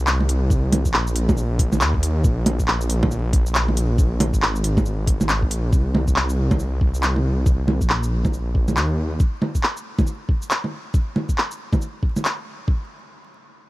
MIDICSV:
0, 0, Header, 1, 3, 480
1, 0, Start_track
1, 0, Key_signature, -3, "minor"
1, 0, Tempo, 434783
1, 558, Time_signature, 4, 2, 24, 8
1, 15119, End_track
2, 0, Start_track
2, 0, Title_t, "Detuned saw bass"
2, 0, Program_c, 0, 39
2, 0, Note_on_c, 0, 36, 99
2, 925, Note_off_c, 0, 36, 0
2, 941, Note_on_c, 0, 34, 87
2, 1996, Note_on_c, 0, 39, 103
2, 2013, Note_off_c, 0, 34, 0
2, 2465, Note_off_c, 0, 39, 0
2, 2478, Note_on_c, 0, 34, 104
2, 4765, Note_off_c, 0, 34, 0
2, 4786, Note_on_c, 0, 32, 89
2, 6084, Note_on_c, 0, 34, 78
2, 6100, Note_off_c, 0, 32, 0
2, 6306, Note_off_c, 0, 34, 0
2, 6322, Note_on_c, 0, 36, 98
2, 8608, Note_off_c, 0, 36, 0
2, 8625, Note_on_c, 0, 34, 84
2, 9673, Note_on_c, 0, 39, 99
2, 9690, Note_off_c, 0, 34, 0
2, 10143, Note_off_c, 0, 39, 0
2, 15119, End_track
3, 0, Start_track
3, 0, Title_t, "Drums"
3, 77, Note_on_c, 9, 39, 109
3, 77, Note_on_c, 9, 82, 55
3, 187, Note_off_c, 9, 39, 0
3, 187, Note_off_c, 9, 82, 0
3, 225, Note_on_c, 9, 61, 35
3, 321, Note_on_c, 9, 46, 78
3, 321, Note_on_c, 9, 82, 31
3, 335, Note_off_c, 9, 61, 0
3, 431, Note_off_c, 9, 46, 0
3, 431, Note_off_c, 9, 82, 0
3, 555, Note_on_c, 9, 36, 117
3, 561, Note_on_c, 9, 82, 53
3, 665, Note_off_c, 9, 36, 0
3, 672, Note_off_c, 9, 82, 0
3, 800, Note_on_c, 9, 46, 77
3, 800, Note_on_c, 9, 61, 61
3, 911, Note_off_c, 9, 46, 0
3, 911, Note_off_c, 9, 61, 0
3, 942, Note_on_c, 9, 36, 61
3, 944, Note_on_c, 9, 82, 55
3, 1034, Note_on_c, 9, 39, 109
3, 1053, Note_off_c, 9, 36, 0
3, 1054, Note_off_c, 9, 82, 0
3, 1145, Note_off_c, 9, 39, 0
3, 1185, Note_on_c, 9, 82, 55
3, 1276, Note_on_c, 9, 46, 82
3, 1295, Note_off_c, 9, 82, 0
3, 1387, Note_off_c, 9, 46, 0
3, 1423, Note_on_c, 9, 36, 109
3, 1424, Note_on_c, 9, 61, 67
3, 1424, Note_on_c, 9, 82, 31
3, 1517, Note_off_c, 9, 82, 0
3, 1517, Note_on_c, 9, 82, 53
3, 1533, Note_off_c, 9, 36, 0
3, 1534, Note_off_c, 9, 61, 0
3, 1627, Note_off_c, 9, 82, 0
3, 1757, Note_on_c, 9, 36, 107
3, 1758, Note_on_c, 9, 46, 80
3, 1868, Note_off_c, 9, 36, 0
3, 1869, Note_off_c, 9, 46, 0
3, 1904, Note_on_c, 9, 61, 55
3, 1904, Note_on_c, 9, 82, 54
3, 1999, Note_off_c, 9, 82, 0
3, 1999, Note_on_c, 9, 39, 104
3, 1999, Note_on_c, 9, 82, 56
3, 2015, Note_off_c, 9, 61, 0
3, 2110, Note_off_c, 9, 39, 0
3, 2110, Note_off_c, 9, 82, 0
3, 2144, Note_on_c, 9, 36, 60
3, 2241, Note_on_c, 9, 46, 77
3, 2241, Note_on_c, 9, 82, 31
3, 2254, Note_off_c, 9, 36, 0
3, 2351, Note_off_c, 9, 46, 0
3, 2351, Note_off_c, 9, 82, 0
3, 2475, Note_on_c, 9, 82, 57
3, 2477, Note_on_c, 9, 36, 117
3, 2586, Note_off_c, 9, 82, 0
3, 2588, Note_off_c, 9, 36, 0
3, 2717, Note_on_c, 9, 46, 80
3, 2717, Note_on_c, 9, 61, 65
3, 2828, Note_off_c, 9, 46, 0
3, 2828, Note_off_c, 9, 61, 0
3, 2865, Note_on_c, 9, 36, 61
3, 2865, Note_on_c, 9, 82, 57
3, 2958, Note_on_c, 9, 39, 107
3, 2975, Note_off_c, 9, 82, 0
3, 2976, Note_off_c, 9, 36, 0
3, 3068, Note_off_c, 9, 39, 0
3, 3104, Note_on_c, 9, 82, 56
3, 3197, Note_on_c, 9, 46, 79
3, 3215, Note_off_c, 9, 82, 0
3, 3308, Note_off_c, 9, 46, 0
3, 3342, Note_on_c, 9, 61, 71
3, 3344, Note_on_c, 9, 36, 104
3, 3436, Note_on_c, 9, 82, 56
3, 3453, Note_off_c, 9, 61, 0
3, 3455, Note_off_c, 9, 36, 0
3, 3546, Note_off_c, 9, 82, 0
3, 3677, Note_on_c, 9, 46, 76
3, 3679, Note_on_c, 9, 36, 104
3, 3788, Note_off_c, 9, 46, 0
3, 3789, Note_off_c, 9, 36, 0
3, 3825, Note_on_c, 9, 82, 57
3, 3919, Note_off_c, 9, 82, 0
3, 3919, Note_on_c, 9, 39, 106
3, 3919, Note_on_c, 9, 82, 55
3, 4030, Note_off_c, 9, 39, 0
3, 4030, Note_off_c, 9, 82, 0
3, 4066, Note_on_c, 9, 61, 38
3, 4162, Note_on_c, 9, 46, 79
3, 4162, Note_on_c, 9, 82, 31
3, 4177, Note_off_c, 9, 61, 0
3, 4272, Note_off_c, 9, 46, 0
3, 4272, Note_off_c, 9, 82, 0
3, 4398, Note_on_c, 9, 36, 117
3, 4401, Note_on_c, 9, 82, 58
3, 4508, Note_off_c, 9, 36, 0
3, 4511, Note_off_c, 9, 82, 0
3, 4639, Note_on_c, 9, 46, 77
3, 4639, Note_on_c, 9, 61, 64
3, 4750, Note_off_c, 9, 46, 0
3, 4750, Note_off_c, 9, 61, 0
3, 4786, Note_on_c, 9, 36, 62
3, 4790, Note_on_c, 9, 82, 58
3, 4884, Note_on_c, 9, 39, 112
3, 4896, Note_off_c, 9, 36, 0
3, 4901, Note_off_c, 9, 82, 0
3, 4994, Note_off_c, 9, 39, 0
3, 5031, Note_on_c, 9, 82, 58
3, 5123, Note_on_c, 9, 46, 78
3, 5142, Note_off_c, 9, 82, 0
3, 5234, Note_off_c, 9, 46, 0
3, 5266, Note_on_c, 9, 36, 108
3, 5273, Note_on_c, 9, 61, 73
3, 5273, Note_on_c, 9, 82, 33
3, 5363, Note_off_c, 9, 82, 0
3, 5363, Note_on_c, 9, 82, 58
3, 5376, Note_off_c, 9, 36, 0
3, 5384, Note_off_c, 9, 61, 0
3, 5473, Note_off_c, 9, 82, 0
3, 5600, Note_on_c, 9, 36, 105
3, 5602, Note_on_c, 9, 46, 78
3, 5711, Note_off_c, 9, 36, 0
3, 5712, Note_off_c, 9, 46, 0
3, 5749, Note_on_c, 9, 61, 57
3, 5749, Note_on_c, 9, 82, 58
3, 5840, Note_off_c, 9, 82, 0
3, 5840, Note_on_c, 9, 39, 102
3, 5840, Note_on_c, 9, 82, 58
3, 5859, Note_off_c, 9, 61, 0
3, 5951, Note_off_c, 9, 39, 0
3, 5951, Note_off_c, 9, 82, 0
3, 5988, Note_on_c, 9, 36, 61
3, 6083, Note_on_c, 9, 46, 78
3, 6083, Note_on_c, 9, 82, 34
3, 6098, Note_off_c, 9, 36, 0
3, 6193, Note_off_c, 9, 46, 0
3, 6193, Note_off_c, 9, 82, 0
3, 6322, Note_on_c, 9, 36, 113
3, 6324, Note_on_c, 9, 82, 56
3, 6432, Note_off_c, 9, 36, 0
3, 6434, Note_off_c, 9, 82, 0
3, 6564, Note_on_c, 9, 61, 62
3, 6675, Note_off_c, 9, 61, 0
3, 6708, Note_on_c, 9, 36, 56
3, 6710, Note_on_c, 9, 82, 55
3, 6802, Note_on_c, 9, 39, 104
3, 6818, Note_off_c, 9, 36, 0
3, 6821, Note_off_c, 9, 82, 0
3, 6912, Note_off_c, 9, 39, 0
3, 6948, Note_on_c, 9, 82, 57
3, 7058, Note_off_c, 9, 82, 0
3, 7187, Note_on_c, 9, 36, 105
3, 7189, Note_on_c, 9, 61, 67
3, 7189, Note_on_c, 9, 82, 31
3, 7280, Note_off_c, 9, 82, 0
3, 7280, Note_on_c, 9, 82, 56
3, 7298, Note_off_c, 9, 36, 0
3, 7299, Note_off_c, 9, 61, 0
3, 7390, Note_off_c, 9, 82, 0
3, 7519, Note_on_c, 9, 36, 104
3, 7630, Note_off_c, 9, 36, 0
3, 7668, Note_on_c, 9, 82, 55
3, 7760, Note_off_c, 9, 82, 0
3, 7760, Note_on_c, 9, 39, 101
3, 7760, Note_on_c, 9, 82, 56
3, 7871, Note_off_c, 9, 39, 0
3, 7871, Note_off_c, 9, 82, 0
3, 7906, Note_on_c, 9, 61, 37
3, 8016, Note_off_c, 9, 61, 0
3, 8238, Note_on_c, 9, 36, 119
3, 8239, Note_on_c, 9, 82, 55
3, 8349, Note_off_c, 9, 36, 0
3, 8350, Note_off_c, 9, 82, 0
3, 8477, Note_on_c, 9, 61, 61
3, 8588, Note_off_c, 9, 61, 0
3, 8625, Note_on_c, 9, 36, 59
3, 8627, Note_on_c, 9, 82, 56
3, 8718, Note_on_c, 9, 39, 110
3, 8735, Note_off_c, 9, 36, 0
3, 8737, Note_off_c, 9, 82, 0
3, 8829, Note_off_c, 9, 39, 0
3, 8868, Note_on_c, 9, 82, 55
3, 8978, Note_off_c, 9, 82, 0
3, 9104, Note_on_c, 9, 36, 111
3, 9107, Note_on_c, 9, 61, 63
3, 9107, Note_on_c, 9, 82, 31
3, 9202, Note_off_c, 9, 82, 0
3, 9202, Note_on_c, 9, 82, 54
3, 9215, Note_off_c, 9, 36, 0
3, 9217, Note_off_c, 9, 61, 0
3, 9312, Note_off_c, 9, 82, 0
3, 9438, Note_on_c, 9, 36, 103
3, 9548, Note_off_c, 9, 36, 0
3, 9584, Note_on_c, 9, 61, 51
3, 9584, Note_on_c, 9, 82, 53
3, 9679, Note_off_c, 9, 82, 0
3, 9679, Note_on_c, 9, 39, 104
3, 9679, Note_on_c, 9, 82, 55
3, 9695, Note_off_c, 9, 61, 0
3, 9789, Note_off_c, 9, 39, 0
3, 9789, Note_off_c, 9, 82, 0
3, 10156, Note_on_c, 9, 82, 52
3, 10157, Note_on_c, 9, 36, 116
3, 10267, Note_off_c, 9, 36, 0
3, 10267, Note_off_c, 9, 82, 0
3, 10397, Note_on_c, 9, 61, 54
3, 10507, Note_off_c, 9, 61, 0
3, 10544, Note_on_c, 9, 36, 58
3, 10544, Note_on_c, 9, 82, 53
3, 10636, Note_on_c, 9, 39, 107
3, 10654, Note_off_c, 9, 36, 0
3, 10655, Note_off_c, 9, 82, 0
3, 10747, Note_off_c, 9, 39, 0
3, 10785, Note_on_c, 9, 82, 53
3, 10896, Note_off_c, 9, 82, 0
3, 11024, Note_on_c, 9, 36, 105
3, 11024, Note_on_c, 9, 61, 60
3, 11024, Note_on_c, 9, 82, 29
3, 11116, Note_off_c, 9, 82, 0
3, 11116, Note_on_c, 9, 82, 52
3, 11134, Note_off_c, 9, 36, 0
3, 11135, Note_off_c, 9, 61, 0
3, 11226, Note_off_c, 9, 82, 0
3, 11357, Note_on_c, 9, 36, 102
3, 11468, Note_off_c, 9, 36, 0
3, 11505, Note_on_c, 9, 82, 54
3, 11600, Note_off_c, 9, 82, 0
3, 11600, Note_on_c, 9, 39, 105
3, 11600, Note_on_c, 9, 82, 55
3, 11711, Note_off_c, 9, 39, 0
3, 11711, Note_off_c, 9, 82, 0
3, 11747, Note_on_c, 9, 61, 33
3, 11858, Note_off_c, 9, 61, 0
3, 12078, Note_on_c, 9, 36, 110
3, 12078, Note_on_c, 9, 82, 49
3, 12188, Note_off_c, 9, 36, 0
3, 12189, Note_off_c, 9, 82, 0
3, 12320, Note_on_c, 9, 61, 53
3, 12430, Note_off_c, 9, 61, 0
3, 12464, Note_on_c, 9, 36, 57
3, 12467, Note_on_c, 9, 82, 50
3, 12565, Note_on_c, 9, 39, 101
3, 12574, Note_off_c, 9, 36, 0
3, 12577, Note_off_c, 9, 82, 0
3, 12675, Note_off_c, 9, 39, 0
3, 12711, Note_on_c, 9, 82, 50
3, 12822, Note_off_c, 9, 82, 0
3, 12945, Note_on_c, 9, 36, 102
3, 12950, Note_on_c, 9, 61, 56
3, 12950, Note_on_c, 9, 82, 28
3, 13045, Note_off_c, 9, 82, 0
3, 13045, Note_on_c, 9, 82, 50
3, 13055, Note_off_c, 9, 36, 0
3, 13060, Note_off_c, 9, 61, 0
3, 13155, Note_off_c, 9, 82, 0
3, 13277, Note_on_c, 9, 36, 95
3, 13388, Note_off_c, 9, 36, 0
3, 13429, Note_on_c, 9, 61, 45
3, 13429, Note_on_c, 9, 82, 48
3, 13524, Note_off_c, 9, 82, 0
3, 13524, Note_on_c, 9, 39, 99
3, 13524, Note_on_c, 9, 82, 49
3, 13539, Note_off_c, 9, 61, 0
3, 13634, Note_off_c, 9, 39, 0
3, 13634, Note_off_c, 9, 82, 0
3, 13997, Note_on_c, 9, 36, 97
3, 14107, Note_off_c, 9, 36, 0
3, 15119, End_track
0, 0, End_of_file